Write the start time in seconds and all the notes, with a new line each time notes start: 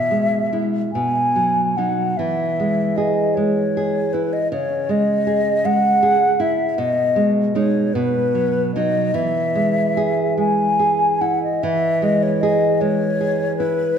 Already playing: B2 E5
0.11 G#3
0.53 G#3 E4
0.92 B2 G#5
1.36 F#3
1.77 F#3 D#4 F#5
2.17 E3 E5
2.60 G#3
2.97 G#4 D#5
3.35 G#3 C#5
3.77 G#4
4.13 E4 B4
4.33 D#5
4.52 C#3 C#5
4.89 G#3 D#5
5.27 G#4
5.65 G#3 F#5
6.03 G#4
6.40 E4 E5
6.78 B2 D#5
7.16 G#3
7.55 G#3 D#4 C#5
7.94 B2 B4
8.35 F#3
8.76 F#3 D#4 D#5
9.14 E3 E5
9.55 G#3
9.97 G#4
10.37 G#3 G#5
10.79 G#4
11.21 E4 F#5
11.43 D#5
11.63 E3 E5
12.02 G#3 D#5
12.23 C#5
12.41 G#4 D#5
12.81 G#3 C#5
13.21 G#4
13.57 E4 B4